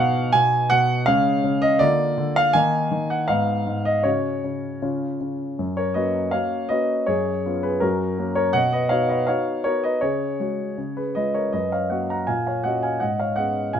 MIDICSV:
0, 0, Header, 1, 2, 480
1, 0, Start_track
1, 0, Key_signature, 6, "major"
1, 0, Tempo, 733496
1, 705, Time_signature, 2, 2, 24, 8
1, 1664, Tempo, 762389
1, 3584, Tempo, 740741
1, 8901, End_track
2, 0, Start_track
2, 0, Title_t, "Grand piano"
2, 0, Program_c, 0, 0
2, 0, Control_c, 0, 64, 127
2, 0, Note_on_c, 0, 47, 73
2, 0, Note_on_c, 0, 59, 55
2, 0, Note_on_c, 0, 63, 54
2, 0, Note_on_c, 0, 77, 107
2, 0, Note_on_c, 0, 78, 103
2, 212, Note_off_c, 0, 47, 0
2, 213, Note_on_c, 0, 80, 124
2, 217, Note_off_c, 0, 78, 0
2, 221, Note_on_c, 0, 47, 70
2, 230, Control_c, 0, 64, 0
2, 236, Note_off_c, 0, 77, 0
2, 455, Note_off_c, 0, 47, 0
2, 456, Note_on_c, 0, 78, 127
2, 459, Note_off_c, 0, 80, 0
2, 465, Note_on_c, 0, 47, 71
2, 677, Note_off_c, 0, 63, 0
2, 678, Note_off_c, 0, 59, 0
2, 693, Note_on_c, 0, 77, 119
2, 697, Note_off_c, 0, 47, 0
2, 700, Note_off_c, 0, 78, 0
2, 700, Note_on_c, 0, 61, 55
2, 701, Note_on_c, 0, 56, 56
2, 702, Note_on_c, 0, 49, 80
2, 844, Control_c, 0, 64, 127
2, 932, Note_off_c, 0, 49, 0
2, 941, Note_on_c, 0, 49, 72
2, 1058, Note_off_c, 0, 77, 0
2, 1058, Note_on_c, 0, 75, 110
2, 1155, Note_off_c, 0, 56, 0
2, 1155, Note_off_c, 0, 61, 0
2, 1173, Note_on_c, 0, 74, 113
2, 1175, Note_off_c, 0, 49, 0
2, 1180, Note_off_c, 0, 75, 0
2, 1181, Note_on_c, 0, 58, 58
2, 1182, Note_on_c, 0, 50, 75
2, 1183, Note_on_c, 0, 65, 57
2, 1189, Control_c, 0, 64, 0
2, 1306, Control_c, 0, 64, 127
2, 1415, Note_off_c, 0, 50, 0
2, 1424, Note_on_c, 0, 50, 69
2, 1539, Note_off_c, 0, 74, 0
2, 1546, Note_on_c, 0, 77, 120
2, 1638, Note_off_c, 0, 58, 0
2, 1639, Note_off_c, 0, 65, 0
2, 1658, Note_off_c, 0, 50, 0
2, 1658, Note_on_c, 0, 80, 119
2, 1666, Note_off_c, 0, 77, 0
2, 1666, Note_on_c, 0, 58, 54
2, 1667, Note_on_c, 0, 51, 76
2, 1668, Note_on_c, 0, 63, 58
2, 1673, Control_c, 0, 64, 0
2, 1801, Control_c, 0, 64, 127
2, 1889, Note_off_c, 0, 51, 0
2, 1899, Note_on_c, 0, 51, 65
2, 2014, Note_off_c, 0, 80, 0
2, 2016, Note_on_c, 0, 78, 83
2, 2112, Note_off_c, 0, 58, 0
2, 2113, Note_off_c, 0, 63, 0
2, 2126, Note_on_c, 0, 77, 98
2, 2129, Note_off_c, 0, 51, 0
2, 2134, Note_on_c, 0, 44, 70
2, 2134, Note_on_c, 0, 59, 53
2, 2135, Note_on_c, 0, 63, 50
2, 2136, Note_off_c, 0, 78, 0
2, 2141, Control_c, 0, 64, 0
2, 2283, Control_c, 0, 64, 127
2, 2362, Note_off_c, 0, 44, 0
2, 2371, Note_on_c, 0, 44, 58
2, 2489, Note_on_c, 0, 75, 96
2, 2493, Note_off_c, 0, 77, 0
2, 2593, Note_off_c, 0, 59, 0
2, 2594, Note_off_c, 0, 63, 0
2, 2603, Note_on_c, 0, 73, 84
2, 2609, Note_off_c, 0, 44, 0
2, 2609, Note_on_c, 0, 61, 48
2, 2610, Note_on_c, 0, 49, 60
2, 2611, Note_on_c, 0, 66, 45
2, 2615, Note_off_c, 0, 75, 0
2, 2625, Control_c, 0, 64, 0
2, 2727, Control_c, 0, 64, 127
2, 2850, Note_off_c, 0, 49, 0
2, 2859, Note_on_c, 0, 49, 51
2, 3073, Note_off_c, 0, 61, 0
2, 3074, Note_off_c, 0, 66, 0
2, 3090, Note_off_c, 0, 49, 0
2, 3096, Note_off_c, 0, 73, 0
2, 3100, Note_on_c, 0, 49, 61
2, 3101, Note_on_c, 0, 61, 41
2, 3101, Note_on_c, 0, 65, 42
2, 3113, Control_c, 0, 64, 0
2, 3228, Control_c, 0, 64, 127
2, 3333, Note_off_c, 0, 49, 0
2, 3343, Note_on_c, 0, 49, 56
2, 3558, Note_off_c, 0, 61, 0
2, 3558, Note_off_c, 0, 65, 0
2, 3576, Note_off_c, 0, 49, 0
2, 3581, Note_on_c, 0, 42, 56
2, 3592, Control_c, 0, 64, 0
2, 3698, Note_on_c, 0, 73, 78
2, 3707, Note_on_c, 0, 70, 59
2, 3727, Control_c, 0, 64, 127
2, 3811, Note_on_c, 0, 75, 83
2, 3817, Note_off_c, 0, 42, 0
2, 3818, Note_off_c, 0, 70, 0
2, 3819, Note_on_c, 0, 58, 42
2, 3819, Note_on_c, 0, 71, 65
2, 3821, Note_on_c, 0, 61, 46
2, 3822, Note_off_c, 0, 73, 0
2, 3823, Note_on_c, 0, 66, 46
2, 4038, Note_off_c, 0, 58, 0
2, 4040, Note_off_c, 0, 61, 0
2, 4040, Note_off_c, 0, 66, 0
2, 4046, Note_off_c, 0, 71, 0
2, 4051, Note_on_c, 0, 77, 84
2, 4058, Note_on_c, 0, 58, 43
2, 4058, Note_on_c, 0, 73, 65
2, 4059, Note_off_c, 0, 75, 0
2, 4060, Note_on_c, 0, 61, 46
2, 4063, Note_on_c, 0, 66, 47
2, 4074, Control_c, 0, 64, 0
2, 4278, Note_off_c, 0, 58, 0
2, 4279, Note_off_c, 0, 61, 0
2, 4281, Note_off_c, 0, 66, 0
2, 4286, Note_off_c, 0, 73, 0
2, 4293, Note_on_c, 0, 75, 87
2, 4299, Note_off_c, 0, 77, 0
2, 4301, Note_on_c, 0, 58, 41
2, 4303, Note_on_c, 0, 71, 63
2, 4304, Note_on_c, 0, 61, 45
2, 4308, Note_on_c, 0, 66, 48
2, 4521, Note_off_c, 0, 58, 0
2, 4522, Note_off_c, 0, 61, 0
2, 4524, Note_off_c, 0, 66, 0
2, 4529, Note_off_c, 0, 71, 0
2, 4538, Note_on_c, 0, 73, 83
2, 4541, Note_off_c, 0, 75, 0
2, 4547, Note_on_c, 0, 42, 56
2, 4547, Note_on_c, 0, 68, 68
2, 4682, Control_c, 0, 64, 127
2, 4780, Note_off_c, 0, 42, 0
2, 4791, Note_on_c, 0, 59, 45
2, 4792, Note_on_c, 0, 61, 45
2, 4796, Note_on_c, 0, 65, 48
2, 4881, Note_off_c, 0, 68, 0
2, 4902, Note_off_c, 0, 73, 0
2, 4905, Note_on_c, 0, 71, 77
2, 4914, Note_on_c, 0, 68, 58
2, 5003, Note_off_c, 0, 59, 0
2, 5004, Note_off_c, 0, 61, 0
2, 5006, Note_off_c, 0, 65, 0
2, 5016, Note_on_c, 0, 70, 81
2, 5021, Note_off_c, 0, 68, 0
2, 5024, Note_off_c, 0, 71, 0
2, 5026, Note_on_c, 0, 42, 61
2, 5026, Note_on_c, 0, 66, 62
2, 5034, Control_c, 0, 64, 0
2, 5138, Control_c, 0, 64, 127
2, 5255, Note_off_c, 0, 42, 0
2, 5257, Note_off_c, 0, 66, 0
2, 5264, Note_on_c, 0, 58, 44
2, 5265, Note_on_c, 0, 61, 48
2, 5266, Note_on_c, 0, 66, 51
2, 5371, Note_off_c, 0, 70, 0
2, 5374, Note_on_c, 0, 73, 88
2, 5381, Note_on_c, 0, 70, 70
2, 5475, Note_off_c, 0, 58, 0
2, 5476, Note_off_c, 0, 61, 0
2, 5477, Note_off_c, 0, 66, 0
2, 5487, Note_on_c, 0, 78, 104
2, 5490, Note_off_c, 0, 70, 0
2, 5494, Note_on_c, 0, 47, 65
2, 5495, Note_off_c, 0, 73, 0
2, 5495, Note_on_c, 0, 75, 72
2, 5506, Control_c, 0, 64, 0
2, 5605, Note_off_c, 0, 75, 0
2, 5611, Note_off_c, 0, 78, 0
2, 5615, Note_on_c, 0, 75, 83
2, 5621, Note_on_c, 0, 71, 64
2, 5622, Control_c, 0, 64, 127
2, 5722, Note_on_c, 0, 77, 90
2, 5725, Note_off_c, 0, 47, 0
2, 5729, Note_off_c, 0, 71, 0
2, 5729, Note_on_c, 0, 73, 72
2, 5731, Note_on_c, 0, 59, 48
2, 5732, Note_on_c, 0, 63, 48
2, 5734, Note_off_c, 0, 75, 0
2, 5735, Note_on_c, 0, 66, 49
2, 5842, Note_off_c, 0, 73, 0
2, 5847, Note_off_c, 0, 77, 0
2, 5850, Note_on_c, 0, 75, 82
2, 5858, Note_on_c, 0, 71, 63
2, 5946, Note_off_c, 0, 59, 0
2, 5947, Note_off_c, 0, 63, 0
2, 5949, Note_off_c, 0, 66, 0
2, 5965, Note_on_c, 0, 77, 85
2, 5966, Note_off_c, 0, 71, 0
2, 5970, Note_off_c, 0, 75, 0
2, 5973, Note_on_c, 0, 73, 73
2, 5975, Note_on_c, 0, 59, 46
2, 5977, Note_on_c, 0, 63, 48
2, 5978, Control_c, 0, 64, 0
2, 5978, Note_on_c, 0, 66, 52
2, 6188, Note_off_c, 0, 59, 0
2, 6190, Note_off_c, 0, 63, 0
2, 6190, Note_off_c, 0, 66, 0
2, 6194, Note_off_c, 0, 73, 0
2, 6207, Note_off_c, 0, 77, 0
2, 6207, Note_on_c, 0, 73, 89
2, 6215, Note_on_c, 0, 59, 45
2, 6215, Note_on_c, 0, 70, 65
2, 6217, Note_on_c, 0, 63, 47
2, 6220, Note_on_c, 0, 66, 49
2, 6324, Note_off_c, 0, 70, 0
2, 6329, Note_off_c, 0, 73, 0
2, 6334, Note_on_c, 0, 75, 86
2, 6342, Note_on_c, 0, 71, 65
2, 6430, Note_off_c, 0, 59, 0
2, 6431, Note_off_c, 0, 63, 0
2, 6433, Note_off_c, 0, 66, 0
2, 6447, Note_on_c, 0, 73, 80
2, 6449, Note_off_c, 0, 71, 0
2, 6453, Note_off_c, 0, 75, 0
2, 6454, Note_on_c, 0, 68, 63
2, 6455, Note_on_c, 0, 49, 57
2, 6582, Control_c, 0, 64, 127
2, 6690, Note_off_c, 0, 49, 0
2, 6698, Note_on_c, 0, 56, 40
2, 6699, Note_on_c, 0, 61, 40
2, 6703, Note_on_c, 0, 66, 43
2, 6918, Note_off_c, 0, 56, 0
2, 6919, Note_off_c, 0, 61, 0
2, 6921, Note_off_c, 0, 66, 0
2, 6945, Note_on_c, 0, 49, 50
2, 6946, Control_c, 0, 64, 0
2, 7040, Note_off_c, 0, 68, 0
2, 7062, Note_off_c, 0, 73, 0
2, 7067, Note_on_c, 0, 71, 63
2, 7074, Note_on_c, 0, 68, 48
2, 7082, Control_c, 0, 64, 127
2, 7182, Note_off_c, 0, 49, 0
2, 7183, Note_off_c, 0, 71, 0
2, 7184, Note_off_c, 0, 68, 0
2, 7185, Note_on_c, 0, 75, 78
2, 7191, Note_on_c, 0, 56, 40
2, 7193, Note_on_c, 0, 71, 57
2, 7196, Note_on_c, 0, 61, 37
2, 7199, Note_on_c, 0, 65, 39
2, 7304, Note_off_c, 0, 71, 0
2, 7309, Note_off_c, 0, 75, 0
2, 7311, Note_on_c, 0, 73, 69
2, 7319, Note_on_c, 0, 70, 55
2, 7409, Note_off_c, 0, 56, 0
2, 7412, Note_off_c, 0, 61, 0
2, 7414, Note_off_c, 0, 65, 0
2, 7428, Note_off_c, 0, 70, 0
2, 7429, Note_on_c, 0, 75, 76
2, 7432, Note_off_c, 0, 73, 0
2, 7435, Note_on_c, 0, 42, 47
2, 7436, Note_on_c, 0, 71, 57
2, 7439, Control_c, 0, 64, 0
2, 7544, Control_c, 0, 64, 127
2, 7546, Note_off_c, 0, 71, 0
2, 7551, Note_off_c, 0, 75, 0
2, 7557, Note_on_c, 0, 77, 66
2, 7562, Note_on_c, 0, 73, 48
2, 7668, Note_off_c, 0, 42, 0
2, 7669, Note_on_c, 0, 78, 61
2, 7670, Note_off_c, 0, 73, 0
2, 7675, Note_off_c, 0, 77, 0
2, 7676, Note_on_c, 0, 75, 48
2, 7677, Note_on_c, 0, 58, 35
2, 7681, Note_on_c, 0, 61, 34
2, 7682, Note_on_c, 0, 66, 39
2, 7787, Note_off_c, 0, 75, 0
2, 7792, Note_off_c, 0, 78, 0
2, 7801, Note_on_c, 0, 82, 70
2, 7808, Note_on_c, 0, 78, 52
2, 7892, Note_off_c, 0, 58, 0
2, 7894, Note_off_c, 0, 61, 0
2, 7895, Note_off_c, 0, 66, 0
2, 7911, Note_on_c, 0, 80, 75
2, 7913, Note_off_c, 0, 78, 0
2, 7917, Note_off_c, 0, 82, 0
2, 7917, Note_on_c, 0, 46, 50
2, 7919, Note_on_c, 0, 77, 58
2, 7920, Control_c, 0, 64, 0
2, 8026, Control_c, 0, 64, 127
2, 8028, Note_off_c, 0, 77, 0
2, 8032, Note_off_c, 0, 80, 0
2, 8040, Note_on_c, 0, 77, 62
2, 8046, Note_on_c, 0, 73, 51
2, 8147, Note_off_c, 0, 46, 0
2, 8148, Note_on_c, 0, 78, 72
2, 8151, Note_off_c, 0, 73, 0
2, 8155, Note_off_c, 0, 77, 0
2, 8156, Note_on_c, 0, 58, 37
2, 8157, Note_on_c, 0, 75, 57
2, 8159, Note_on_c, 0, 61, 35
2, 8162, Note_on_c, 0, 66, 41
2, 8265, Note_off_c, 0, 75, 0
2, 8268, Note_off_c, 0, 78, 0
2, 8273, Note_on_c, 0, 80, 73
2, 8280, Note_on_c, 0, 77, 54
2, 8368, Note_off_c, 0, 58, 0
2, 8369, Note_off_c, 0, 61, 0
2, 8371, Note_off_c, 0, 66, 0
2, 8384, Note_on_c, 0, 78, 75
2, 8386, Note_off_c, 0, 77, 0
2, 8390, Note_off_c, 0, 80, 0
2, 8390, Note_on_c, 0, 44, 48
2, 8391, Note_on_c, 0, 75, 62
2, 8397, Control_c, 0, 64, 0
2, 8500, Note_off_c, 0, 75, 0
2, 8505, Note_off_c, 0, 78, 0
2, 8511, Note_on_c, 0, 77, 69
2, 8518, Note_on_c, 0, 73, 50
2, 8529, Control_c, 0, 64, 127
2, 8616, Note_on_c, 0, 78, 75
2, 8619, Note_off_c, 0, 44, 0
2, 8623, Note_off_c, 0, 73, 0
2, 8624, Note_on_c, 0, 59, 39
2, 8625, Note_on_c, 0, 75, 59
2, 8627, Note_off_c, 0, 77, 0
2, 8627, Note_on_c, 0, 61, 38
2, 8629, Note_on_c, 0, 68, 44
2, 8839, Note_off_c, 0, 59, 0
2, 8840, Note_off_c, 0, 61, 0
2, 8841, Note_off_c, 0, 68, 0
2, 8846, Note_off_c, 0, 75, 0
2, 8858, Note_off_c, 0, 78, 0
2, 8859, Note_on_c, 0, 80, 80
2, 8866, Note_on_c, 0, 77, 61
2, 8867, Note_on_c, 0, 46, 53
2, 8868, Control_c, 0, 64, 0
2, 8901, Note_off_c, 0, 46, 0
2, 8901, Note_off_c, 0, 77, 0
2, 8901, Note_off_c, 0, 80, 0
2, 8901, End_track
0, 0, End_of_file